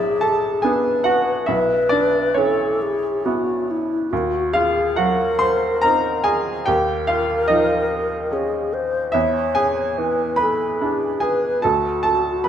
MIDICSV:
0, 0, Header, 1, 3, 480
1, 0, Start_track
1, 0, Tempo, 864553
1, 831, Time_signature, 3, 2, 24, 8
1, 3243, Tempo, 828729
1, 7092, End_track
2, 0, Start_track
2, 0, Title_t, "Alto flute"
2, 0, Program_c, 0, 73
2, 0, Note_on_c, 0, 68, 73
2, 358, Note_on_c, 0, 71, 66
2, 367, Note_off_c, 0, 68, 0
2, 830, Note_off_c, 0, 71, 0
2, 838, Note_on_c, 0, 71, 71
2, 1322, Note_on_c, 0, 69, 62
2, 1330, Note_off_c, 0, 71, 0
2, 1565, Note_on_c, 0, 68, 63
2, 1574, Note_off_c, 0, 69, 0
2, 1806, Note_on_c, 0, 66, 60
2, 1814, Note_off_c, 0, 68, 0
2, 2059, Note_on_c, 0, 64, 56
2, 2067, Note_off_c, 0, 66, 0
2, 2281, Note_on_c, 0, 66, 62
2, 2289, Note_off_c, 0, 64, 0
2, 2516, Note_on_c, 0, 68, 60
2, 2524, Note_off_c, 0, 66, 0
2, 2760, Note_on_c, 0, 70, 76
2, 2769, Note_off_c, 0, 68, 0
2, 3572, Note_off_c, 0, 70, 0
2, 3725, Note_on_c, 0, 70, 83
2, 4683, Note_on_c, 0, 68, 57
2, 4692, Note_off_c, 0, 70, 0
2, 4920, Note_on_c, 0, 72, 67
2, 4929, Note_off_c, 0, 68, 0
2, 5154, Note_on_c, 0, 73, 63
2, 5163, Note_off_c, 0, 72, 0
2, 5642, Note_on_c, 0, 71, 67
2, 5651, Note_off_c, 0, 73, 0
2, 5883, Note_off_c, 0, 71, 0
2, 5889, Note_on_c, 0, 69, 62
2, 6130, Note_on_c, 0, 68, 57
2, 6138, Note_off_c, 0, 69, 0
2, 6362, Note_on_c, 0, 71, 59
2, 6371, Note_off_c, 0, 68, 0
2, 6596, Note_off_c, 0, 71, 0
2, 6600, Note_on_c, 0, 66, 66
2, 7092, Note_off_c, 0, 66, 0
2, 7092, End_track
3, 0, Start_track
3, 0, Title_t, "Grand piano"
3, 0, Program_c, 1, 0
3, 0, Control_c, 1, 64, 127
3, 0, Note_on_c, 1, 35, 53
3, 0, Note_on_c, 1, 54, 44
3, 0, Note_on_c, 1, 62, 55
3, 0, Note_on_c, 1, 64, 58
3, 0, Note_on_c, 1, 74, 72
3, 0, Note_on_c, 1, 76, 75
3, 101, Note_off_c, 1, 64, 0
3, 116, Note_off_c, 1, 76, 0
3, 117, Note_on_c, 1, 81, 78
3, 118, Note_on_c, 1, 69, 60
3, 341, Note_off_c, 1, 69, 0
3, 345, Note_on_c, 1, 80, 64
3, 351, Note_on_c, 1, 68, 52
3, 357, Note_off_c, 1, 62, 0
3, 357, Note_off_c, 1, 81, 0
3, 357, Note_on_c, 1, 62, 43
3, 358, Note_on_c, 1, 59, 42
3, 572, Note_off_c, 1, 68, 0
3, 577, Note_on_c, 1, 78, 77
3, 585, Note_on_c, 1, 66, 59
3, 586, Note_off_c, 1, 80, 0
3, 640, Note_off_c, 1, 54, 0
3, 807, Note_off_c, 1, 35, 0
3, 807, Note_off_c, 1, 59, 0
3, 807, Note_off_c, 1, 62, 0
3, 810, Note_off_c, 1, 66, 0
3, 812, Note_on_c, 1, 76, 76
3, 821, Note_on_c, 1, 64, 58
3, 823, Note_off_c, 1, 78, 0
3, 825, Note_on_c, 1, 35, 57
3, 839, Control_c, 1, 64, 0
3, 842, Note_off_c, 1, 74, 0
3, 925, Control_c, 1, 64, 127
3, 1050, Note_off_c, 1, 64, 0
3, 1051, Note_on_c, 1, 74, 78
3, 1063, Note_off_c, 1, 76, 0
3, 1064, Note_on_c, 1, 62, 59
3, 1294, Note_off_c, 1, 62, 0
3, 1301, Note_on_c, 1, 73, 68
3, 1305, Note_off_c, 1, 74, 0
3, 1308, Note_on_c, 1, 61, 55
3, 1314, Note_on_c, 1, 52, 46
3, 1809, Note_on_c, 1, 59, 44
3, 1814, Note_on_c, 1, 64, 47
3, 2091, Note_off_c, 1, 52, 0
3, 2258, Note_off_c, 1, 61, 0
3, 2259, Note_off_c, 1, 35, 0
3, 2264, Note_off_c, 1, 59, 0
3, 2267, Note_off_c, 1, 64, 0
3, 2277, Note_off_c, 1, 73, 0
3, 2292, Note_on_c, 1, 39, 60
3, 2295, Control_c, 1, 64, 0
3, 2377, Control_c, 1, 64, 127
3, 2518, Note_on_c, 1, 77, 83
3, 2528, Note_on_c, 1, 65, 63
3, 2751, Note_off_c, 1, 65, 0
3, 2756, Note_on_c, 1, 78, 72
3, 2761, Note_on_c, 1, 66, 50
3, 2762, Note_off_c, 1, 77, 0
3, 2768, Note_on_c, 1, 54, 46
3, 2985, Note_off_c, 1, 66, 0
3, 2992, Note_on_c, 1, 84, 87
3, 2994, Note_on_c, 1, 72, 63
3, 2999, Note_off_c, 1, 78, 0
3, 3219, Note_off_c, 1, 72, 0
3, 3229, Note_on_c, 1, 82, 83
3, 3235, Note_off_c, 1, 84, 0
3, 3236, Note_on_c, 1, 70, 61
3, 3242, Note_on_c, 1, 60, 46
3, 3244, Note_on_c, 1, 63, 50
3, 3468, Note_off_c, 1, 70, 0
3, 3472, Note_on_c, 1, 80, 83
3, 3475, Note_on_c, 1, 68, 63
3, 3481, Note_off_c, 1, 82, 0
3, 3538, Note_off_c, 1, 54, 0
3, 3706, Note_off_c, 1, 68, 0
3, 3707, Note_off_c, 1, 60, 0
3, 3709, Note_off_c, 1, 63, 0
3, 3711, Note_off_c, 1, 39, 0
3, 3715, Note_on_c, 1, 79, 81
3, 3722, Note_off_c, 1, 80, 0
3, 3722, Note_on_c, 1, 67, 67
3, 3728, Note_on_c, 1, 39, 58
3, 3738, Control_c, 1, 64, 0
3, 3831, Control_c, 1, 64, 127
3, 3947, Note_off_c, 1, 67, 0
3, 3956, Note_on_c, 1, 77, 83
3, 3960, Note_off_c, 1, 79, 0
3, 3966, Note_on_c, 1, 65, 64
3, 4189, Note_off_c, 1, 65, 0
3, 4190, Note_on_c, 1, 75, 80
3, 4197, Note_on_c, 1, 63, 60
3, 4201, Note_off_c, 1, 77, 0
3, 4202, Note_on_c, 1, 53, 50
3, 4676, Note_on_c, 1, 61, 49
3, 4967, Note_off_c, 1, 53, 0
3, 5134, Note_off_c, 1, 63, 0
3, 5135, Note_off_c, 1, 61, 0
3, 5137, Note_off_c, 1, 39, 0
3, 5141, Note_on_c, 1, 76, 81
3, 5151, Note_on_c, 1, 64, 58
3, 5153, Note_off_c, 1, 75, 0
3, 5155, Note_on_c, 1, 40, 56
3, 5170, Control_c, 1, 64, 0
3, 5266, Control_c, 1, 64, 127
3, 5379, Note_off_c, 1, 64, 0
3, 5390, Note_on_c, 1, 80, 82
3, 5392, Note_off_c, 1, 76, 0
3, 5394, Note_on_c, 1, 68, 60
3, 5639, Note_on_c, 1, 52, 46
3, 5855, Note_off_c, 1, 68, 0
3, 5862, Note_on_c, 1, 83, 79
3, 5868, Note_on_c, 1, 71, 60
3, 5876, Note_off_c, 1, 80, 0
3, 6123, Note_on_c, 1, 64, 48
3, 6125, Note_on_c, 1, 62, 42
3, 6333, Note_off_c, 1, 71, 0
3, 6348, Note_on_c, 1, 80, 70
3, 6353, Note_off_c, 1, 83, 0
3, 6356, Note_on_c, 1, 68, 55
3, 6410, Note_off_c, 1, 52, 0
3, 6577, Note_off_c, 1, 40, 0
3, 6580, Note_off_c, 1, 64, 0
3, 6581, Note_off_c, 1, 62, 0
3, 6583, Note_off_c, 1, 68, 0
3, 6592, Note_on_c, 1, 81, 71
3, 6596, Note_off_c, 1, 80, 0
3, 6600, Note_on_c, 1, 69, 59
3, 6607, Note_on_c, 1, 38, 52
3, 6612, Control_c, 1, 64, 0
3, 6710, Control_c, 1, 64, 127
3, 6818, Note_off_c, 1, 81, 0
3, 6824, Note_off_c, 1, 69, 0
3, 6827, Note_on_c, 1, 81, 79
3, 6835, Note_on_c, 1, 69, 55
3, 7060, Note_off_c, 1, 69, 0
3, 7065, Note_on_c, 1, 83, 70
3, 7072, Note_on_c, 1, 71, 54
3, 7073, Note_off_c, 1, 81, 0
3, 7092, Note_off_c, 1, 38, 0
3, 7092, Note_off_c, 1, 71, 0
3, 7092, Note_off_c, 1, 83, 0
3, 7092, End_track
0, 0, End_of_file